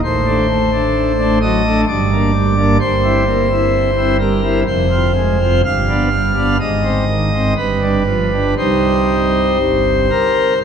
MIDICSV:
0, 0, Header, 1, 2, 480
1, 0, Start_track
1, 0, Key_signature, -3, "minor"
1, 0, Tempo, 928793
1, 18, Time_signature, 3, 2, 24, 8
1, 2418, Tempo, 961538
1, 3378, Tempo, 985222
1, 4338, Tempo, 1023891
1, 5308, End_track
2, 0, Start_track
2, 0, Title_t, "Pipe organ"
2, 0, Program_c, 0, 19
2, 19, Note_on_c, 0, 45, 74
2, 20, Note_on_c, 0, 33, 72
2, 21, Note_on_c, 0, 72, 99
2, 136, Note_on_c, 0, 57, 54
2, 138, Note_on_c, 0, 62, 57
2, 237, Note_off_c, 0, 57, 0
2, 239, Note_off_c, 0, 62, 0
2, 255, Note_on_c, 0, 57, 57
2, 362, Note_off_c, 0, 57, 0
2, 375, Note_on_c, 0, 57, 51
2, 376, Note_on_c, 0, 62, 56
2, 579, Note_off_c, 0, 57, 0
2, 579, Note_off_c, 0, 62, 0
2, 614, Note_on_c, 0, 57, 52
2, 615, Note_on_c, 0, 62, 60
2, 716, Note_off_c, 0, 57, 0
2, 716, Note_off_c, 0, 72, 0
2, 717, Note_off_c, 0, 62, 0
2, 732, Note_on_c, 0, 75, 102
2, 734, Note_on_c, 0, 54, 61
2, 841, Note_off_c, 0, 54, 0
2, 852, Note_on_c, 0, 57, 54
2, 854, Note_on_c, 0, 62, 62
2, 936, Note_off_c, 0, 75, 0
2, 954, Note_off_c, 0, 33, 0
2, 954, Note_off_c, 0, 45, 0
2, 955, Note_off_c, 0, 57, 0
2, 956, Note_off_c, 0, 62, 0
2, 972, Note_on_c, 0, 43, 72
2, 972, Note_on_c, 0, 74, 91
2, 974, Note_on_c, 0, 31, 73
2, 1093, Note_on_c, 0, 58, 53
2, 1095, Note_on_c, 0, 62, 60
2, 1195, Note_off_c, 0, 58, 0
2, 1196, Note_off_c, 0, 62, 0
2, 1209, Note_on_c, 0, 55, 57
2, 1317, Note_off_c, 0, 55, 0
2, 1329, Note_on_c, 0, 58, 53
2, 1329, Note_on_c, 0, 62, 62
2, 1432, Note_off_c, 0, 58, 0
2, 1432, Note_off_c, 0, 62, 0
2, 1436, Note_off_c, 0, 43, 0
2, 1436, Note_off_c, 0, 74, 0
2, 1437, Note_off_c, 0, 31, 0
2, 1447, Note_on_c, 0, 31, 75
2, 1448, Note_on_c, 0, 43, 72
2, 1448, Note_on_c, 0, 72, 108
2, 1570, Note_on_c, 0, 60, 54
2, 1570, Note_on_c, 0, 64, 61
2, 1673, Note_off_c, 0, 60, 0
2, 1673, Note_off_c, 0, 64, 0
2, 1691, Note_on_c, 0, 58, 62
2, 1799, Note_off_c, 0, 58, 0
2, 1809, Note_on_c, 0, 60, 54
2, 1810, Note_on_c, 0, 64, 58
2, 2017, Note_off_c, 0, 60, 0
2, 2018, Note_off_c, 0, 64, 0
2, 2051, Note_on_c, 0, 60, 49
2, 2052, Note_on_c, 0, 64, 53
2, 2154, Note_off_c, 0, 72, 0
2, 2156, Note_off_c, 0, 60, 0
2, 2157, Note_off_c, 0, 64, 0
2, 2167, Note_on_c, 0, 55, 58
2, 2167, Note_on_c, 0, 70, 95
2, 2279, Note_off_c, 0, 55, 0
2, 2289, Note_on_c, 0, 64, 61
2, 2291, Note_on_c, 0, 60, 55
2, 2377, Note_off_c, 0, 70, 0
2, 2395, Note_off_c, 0, 64, 0
2, 2396, Note_off_c, 0, 31, 0
2, 2396, Note_off_c, 0, 43, 0
2, 2396, Note_off_c, 0, 60, 0
2, 2410, Note_on_c, 0, 41, 69
2, 2411, Note_on_c, 0, 29, 68
2, 2412, Note_on_c, 0, 72, 91
2, 2532, Note_on_c, 0, 60, 57
2, 2533, Note_on_c, 0, 65, 59
2, 2638, Note_off_c, 0, 60, 0
2, 2639, Note_off_c, 0, 65, 0
2, 2656, Note_on_c, 0, 56, 56
2, 2767, Note_off_c, 0, 56, 0
2, 2779, Note_on_c, 0, 60, 51
2, 2780, Note_on_c, 0, 65, 59
2, 2883, Note_off_c, 0, 60, 0
2, 2884, Note_off_c, 0, 65, 0
2, 2885, Note_off_c, 0, 29, 0
2, 2885, Note_off_c, 0, 41, 0
2, 2885, Note_off_c, 0, 72, 0
2, 2901, Note_on_c, 0, 77, 110
2, 2902, Note_on_c, 0, 31, 71
2, 2903, Note_on_c, 0, 43, 75
2, 3023, Note_on_c, 0, 59, 51
2, 3024, Note_on_c, 0, 62, 57
2, 3123, Note_off_c, 0, 59, 0
2, 3124, Note_off_c, 0, 62, 0
2, 3144, Note_on_c, 0, 55, 49
2, 3248, Note_off_c, 0, 55, 0
2, 3258, Note_on_c, 0, 59, 52
2, 3258, Note_on_c, 0, 62, 53
2, 3360, Note_off_c, 0, 59, 0
2, 3360, Note_off_c, 0, 62, 0
2, 3363, Note_off_c, 0, 77, 0
2, 3364, Note_off_c, 0, 31, 0
2, 3364, Note_off_c, 0, 43, 0
2, 3378, Note_on_c, 0, 44, 65
2, 3378, Note_on_c, 0, 75, 83
2, 3379, Note_on_c, 0, 32, 66
2, 3492, Note_on_c, 0, 60, 53
2, 3594, Note_off_c, 0, 60, 0
2, 3612, Note_on_c, 0, 51, 50
2, 3718, Note_off_c, 0, 51, 0
2, 3734, Note_on_c, 0, 60, 51
2, 3834, Note_off_c, 0, 60, 0
2, 3836, Note_off_c, 0, 32, 0
2, 3836, Note_off_c, 0, 44, 0
2, 3836, Note_off_c, 0, 75, 0
2, 3850, Note_on_c, 0, 31, 61
2, 3850, Note_on_c, 0, 43, 63
2, 3851, Note_on_c, 0, 71, 85
2, 3970, Note_on_c, 0, 55, 47
2, 3970, Note_on_c, 0, 62, 51
2, 4073, Note_off_c, 0, 55, 0
2, 4073, Note_off_c, 0, 62, 0
2, 4093, Note_on_c, 0, 53, 50
2, 4202, Note_off_c, 0, 53, 0
2, 4216, Note_on_c, 0, 55, 42
2, 4216, Note_on_c, 0, 62, 47
2, 4321, Note_off_c, 0, 55, 0
2, 4321, Note_off_c, 0, 62, 0
2, 4324, Note_off_c, 0, 31, 0
2, 4324, Note_off_c, 0, 43, 0
2, 4324, Note_off_c, 0, 71, 0
2, 4340, Note_on_c, 0, 72, 82
2, 4341, Note_on_c, 0, 36, 59
2, 4341, Note_on_c, 0, 48, 54
2, 4341, Note_on_c, 0, 55, 43
2, 4341, Note_on_c, 0, 63, 44
2, 4810, Note_off_c, 0, 55, 0
2, 4810, Note_off_c, 0, 63, 0
2, 4820, Note_on_c, 0, 43, 53
2, 4821, Note_on_c, 0, 31, 51
2, 5045, Note_off_c, 0, 36, 0
2, 5045, Note_off_c, 0, 48, 0
2, 5053, Note_off_c, 0, 43, 0
2, 5054, Note_off_c, 0, 31, 0
2, 5057, Note_on_c, 0, 70, 84
2, 5260, Note_off_c, 0, 70, 0
2, 5284, Note_off_c, 0, 72, 0
2, 5294, Note_on_c, 0, 24, 51
2, 5294, Note_on_c, 0, 36, 52
2, 5294, Note_on_c, 0, 72, 71
2, 5308, Note_off_c, 0, 24, 0
2, 5308, Note_off_c, 0, 36, 0
2, 5308, Note_off_c, 0, 72, 0
2, 5308, End_track
0, 0, End_of_file